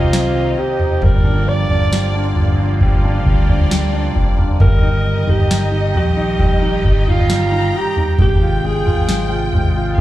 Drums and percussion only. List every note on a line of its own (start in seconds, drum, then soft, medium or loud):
0.13 snare loud
0.79 floor tom medium
1.02 kick loud
1.02 floor tom medium
1.69 floor tom medium
1.93 snare loud
2.36 floor tom medium
2.81 kick medium
2.81 floor tom medium
3.26 kick medium
3.48 floor tom medium
3.71 snare loud
4.16 kick medium
4.38 floor tom medium
4.60 kick loud
4.60 floor tom loud
5.28 floor tom medium
5.51 snare loud
5.94 floor tom medium
6.39 kick medium
6.39 floor tom medium
6.84 kick medium
7.06 floor tom medium
7.30 snare loud
7.96 floor tom medium
8.19 kick loud
8.19 floor tom loud
8.86 floor tom medium
9.09 snare loud
9.52 floor tom medium
9.98 kick medium